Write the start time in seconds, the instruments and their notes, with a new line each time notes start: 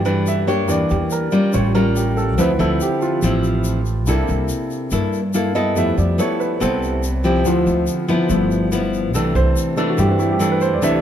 Already playing: nylon-string guitar G2, upright bass G2, grand piano E3 A3 D4 F#4 G4
0.05 nylon-string guitar E3 A3 D4, grand piano B4, shaker
0.27 grand piano E5, shaker
0.47 nylon-string guitar A#3 D4 G4, grand piano C#5, shaker
0.68 upright bass E2, nylon-string guitar E3, grand piano G3 A#3 D4 D5, shaker
0.90 upright bass E2, grand piano G4, shaker
1.10 grand piano A#4, shaker
1.31 nylon-string guitar G3 C#4 F4, grand piano D5, shaker
1.52 upright bass A1, nylon-string guitar A2, grand piano G3 C#4 F4 C#5, shaker
1.75 nylon-string guitar G3 C#4 F4, grand piano A#4, shaker
1.96 grand piano G4, shaker
2.17 grand piano A4, shaker
2.37 upright bass D2, nylon-string guitar D3 F3 C4 E4, grand piano F3 C4 E4 B4, shaker
2.59 upright bass D2, nylon-string guitar F3 C4 E4, grand piano A4, shaker
2.80 grand piano G4, shaker
3.01 grand piano F4, shaker
3.22 upright bass A1, nylon-string guitar A2 F3 C4 E4, shaker
3.44 shaker
3.64 shaker
3.85 shaker
4.07 upright bass C2, nylon-string guitar C3 A#3 E4 A4, grand piano A#3 D4 E4, shaker
4.28 upright bass C2, shaker
4.49 shaker
4.70 shaker
4.91 nylon-string guitar G2 A#3 E4 A4, upright bass G2, shaker
5.13 shaker
5.33 nylon-string guitar A#3 E4 A4, grand piano F5, shaker
5.55 nylon-string guitar B3 E4 A4, grand piano D#5, shaker
5.75 upright bass F2, nylon-string guitar F3, grand piano G3 A3 B3 E4 E5, shaker
5.98 upright bass F2, grand piano D5, shaker
6.18 nylon-string guitar B3 E4 A4, grand piano C#5, shaker
6.40 grand piano B4, shaker
6.60 upright bass C2, nylon-string guitar C3 B3 E4 A4, grand piano C5, shaker
6.83 shaker
7.03 shaker
7.24 nylon-string guitar F3 C4 E4, grand piano G4, shaker
7.45 upright bass D2, nylon-string guitar D3, grand piano F3 C4 E4 F4, shaker
7.67 upright bass D2, shaker
7.87 shaker
8.08 nylon-string guitar F3 B3 E4, shaker
8.29 upright bass G1, nylon-string guitar G2, grand piano F3 A3 B3 E4, shaker
8.51 shaker
8.72 nylon-string guitar F3 B3 E4, shaker
8.93 shaker
9.13 upright bass C2, nylon-string guitar C3 E3 A3 D4, grand piano A4, shaker
9.35 upright bass C2, grand piano C5, shaker
9.56 shaker
9.76 nylon-string guitar E3 A3 D4, grand piano A3 D4 E4 A4, shaker
9.89 grand piano F#4
9.98 nylon-string guitar G2, upright bass G2, grand piano G4, shaker
10.10 grand piano C4
10.19 grand piano E4, shaker
10.31 grand piano G4
10.39 nylon-string guitar E3 A3 D4, grand piano A4, shaker
10.52 grand piano B4
10.61 grand piano C5, shaker
10.74 grand piano D5
10.82 upright bass C2, nylon-string guitar C3 E3 A3 D4, grand piano A3 D4 E4 E5, shaker
10.94 grand piano D5